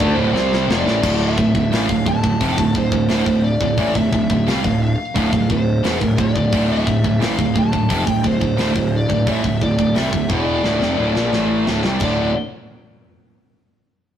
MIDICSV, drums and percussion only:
0, 0, Header, 1, 2, 480
1, 0, Start_track
1, 0, Key_signature, -1, "minor"
1, 0, Tempo, 686499
1, 724, Time_signature, 4, 2, 24, 8
1, 9911, End_track
2, 0, Start_track
2, 0, Title_t, "Drums"
2, 1, Note_on_c, 9, 36, 103
2, 71, Note_off_c, 9, 36, 0
2, 252, Note_on_c, 9, 38, 61
2, 322, Note_off_c, 9, 38, 0
2, 371, Note_on_c, 9, 38, 58
2, 441, Note_off_c, 9, 38, 0
2, 494, Note_on_c, 9, 38, 105
2, 564, Note_off_c, 9, 38, 0
2, 613, Note_on_c, 9, 38, 71
2, 683, Note_off_c, 9, 38, 0
2, 724, Note_on_c, 9, 36, 103
2, 725, Note_on_c, 9, 49, 90
2, 794, Note_off_c, 9, 36, 0
2, 795, Note_off_c, 9, 49, 0
2, 963, Note_on_c, 9, 36, 85
2, 1033, Note_off_c, 9, 36, 0
2, 1083, Note_on_c, 9, 36, 86
2, 1153, Note_off_c, 9, 36, 0
2, 1207, Note_on_c, 9, 46, 52
2, 1215, Note_on_c, 9, 38, 103
2, 1277, Note_off_c, 9, 46, 0
2, 1285, Note_off_c, 9, 38, 0
2, 1323, Note_on_c, 9, 36, 83
2, 1393, Note_off_c, 9, 36, 0
2, 1443, Note_on_c, 9, 36, 94
2, 1513, Note_off_c, 9, 36, 0
2, 1564, Note_on_c, 9, 36, 86
2, 1634, Note_off_c, 9, 36, 0
2, 1684, Note_on_c, 9, 36, 108
2, 1684, Note_on_c, 9, 46, 54
2, 1754, Note_off_c, 9, 36, 0
2, 1754, Note_off_c, 9, 46, 0
2, 1804, Note_on_c, 9, 36, 92
2, 1874, Note_off_c, 9, 36, 0
2, 1922, Note_on_c, 9, 36, 82
2, 1992, Note_off_c, 9, 36, 0
2, 2041, Note_on_c, 9, 36, 95
2, 2111, Note_off_c, 9, 36, 0
2, 2160, Note_on_c, 9, 46, 55
2, 2168, Note_on_c, 9, 38, 92
2, 2230, Note_off_c, 9, 46, 0
2, 2237, Note_off_c, 9, 38, 0
2, 2282, Note_on_c, 9, 36, 84
2, 2352, Note_off_c, 9, 36, 0
2, 2522, Note_on_c, 9, 36, 84
2, 2591, Note_off_c, 9, 36, 0
2, 2639, Note_on_c, 9, 46, 45
2, 2642, Note_on_c, 9, 36, 84
2, 2708, Note_off_c, 9, 46, 0
2, 2712, Note_off_c, 9, 36, 0
2, 2763, Note_on_c, 9, 36, 77
2, 2833, Note_off_c, 9, 36, 0
2, 2885, Note_on_c, 9, 36, 84
2, 2955, Note_off_c, 9, 36, 0
2, 3005, Note_on_c, 9, 36, 80
2, 3075, Note_off_c, 9, 36, 0
2, 3130, Note_on_c, 9, 46, 48
2, 3137, Note_on_c, 9, 38, 95
2, 3200, Note_off_c, 9, 46, 0
2, 3207, Note_off_c, 9, 38, 0
2, 3247, Note_on_c, 9, 36, 87
2, 3317, Note_off_c, 9, 36, 0
2, 3606, Note_on_c, 9, 36, 108
2, 3610, Note_on_c, 9, 46, 53
2, 3676, Note_off_c, 9, 36, 0
2, 3680, Note_off_c, 9, 46, 0
2, 3725, Note_on_c, 9, 36, 89
2, 3795, Note_off_c, 9, 36, 0
2, 3844, Note_on_c, 9, 36, 88
2, 3914, Note_off_c, 9, 36, 0
2, 4084, Note_on_c, 9, 46, 51
2, 4092, Note_on_c, 9, 38, 105
2, 4154, Note_off_c, 9, 46, 0
2, 4162, Note_off_c, 9, 38, 0
2, 4205, Note_on_c, 9, 36, 75
2, 4275, Note_off_c, 9, 36, 0
2, 4324, Note_on_c, 9, 36, 99
2, 4394, Note_off_c, 9, 36, 0
2, 4444, Note_on_c, 9, 36, 71
2, 4514, Note_off_c, 9, 36, 0
2, 4563, Note_on_c, 9, 36, 99
2, 4565, Note_on_c, 9, 46, 51
2, 4633, Note_off_c, 9, 36, 0
2, 4635, Note_off_c, 9, 46, 0
2, 4803, Note_on_c, 9, 36, 83
2, 4873, Note_off_c, 9, 36, 0
2, 4925, Note_on_c, 9, 36, 79
2, 4995, Note_off_c, 9, 36, 0
2, 5044, Note_on_c, 9, 46, 45
2, 5052, Note_on_c, 9, 38, 95
2, 5114, Note_off_c, 9, 46, 0
2, 5122, Note_off_c, 9, 38, 0
2, 5165, Note_on_c, 9, 36, 88
2, 5235, Note_off_c, 9, 36, 0
2, 5283, Note_on_c, 9, 36, 88
2, 5353, Note_off_c, 9, 36, 0
2, 5405, Note_on_c, 9, 36, 86
2, 5475, Note_off_c, 9, 36, 0
2, 5525, Note_on_c, 9, 36, 111
2, 5527, Note_on_c, 9, 46, 59
2, 5595, Note_off_c, 9, 36, 0
2, 5597, Note_off_c, 9, 46, 0
2, 5644, Note_on_c, 9, 36, 85
2, 5714, Note_off_c, 9, 36, 0
2, 5763, Note_on_c, 9, 36, 84
2, 5833, Note_off_c, 9, 36, 0
2, 5883, Note_on_c, 9, 36, 92
2, 5953, Note_off_c, 9, 36, 0
2, 6001, Note_on_c, 9, 46, 46
2, 6008, Note_on_c, 9, 38, 86
2, 6071, Note_off_c, 9, 46, 0
2, 6078, Note_off_c, 9, 38, 0
2, 6123, Note_on_c, 9, 36, 81
2, 6193, Note_off_c, 9, 36, 0
2, 6361, Note_on_c, 9, 36, 75
2, 6431, Note_off_c, 9, 36, 0
2, 6481, Note_on_c, 9, 36, 100
2, 6482, Note_on_c, 9, 46, 48
2, 6551, Note_off_c, 9, 36, 0
2, 6552, Note_off_c, 9, 46, 0
2, 6601, Note_on_c, 9, 36, 72
2, 6671, Note_off_c, 9, 36, 0
2, 6723, Note_on_c, 9, 36, 75
2, 6793, Note_off_c, 9, 36, 0
2, 6843, Note_on_c, 9, 36, 76
2, 6913, Note_off_c, 9, 36, 0
2, 6959, Note_on_c, 9, 46, 46
2, 6967, Note_on_c, 9, 38, 90
2, 7029, Note_off_c, 9, 46, 0
2, 7037, Note_off_c, 9, 38, 0
2, 7082, Note_on_c, 9, 36, 76
2, 7152, Note_off_c, 9, 36, 0
2, 7200, Note_on_c, 9, 36, 106
2, 7270, Note_off_c, 9, 36, 0
2, 7442, Note_on_c, 9, 38, 56
2, 7512, Note_off_c, 9, 38, 0
2, 7568, Note_on_c, 9, 38, 54
2, 7638, Note_off_c, 9, 38, 0
2, 7800, Note_on_c, 9, 38, 65
2, 7870, Note_off_c, 9, 38, 0
2, 7922, Note_on_c, 9, 38, 71
2, 7992, Note_off_c, 9, 38, 0
2, 8162, Note_on_c, 9, 38, 96
2, 8232, Note_off_c, 9, 38, 0
2, 8280, Note_on_c, 9, 38, 67
2, 8350, Note_off_c, 9, 38, 0
2, 8388, Note_on_c, 9, 49, 68
2, 8397, Note_on_c, 9, 36, 90
2, 8458, Note_off_c, 9, 49, 0
2, 8467, Note_off_c, 9, 36, 0
2, 9911, End_track
0, 0, End_of_file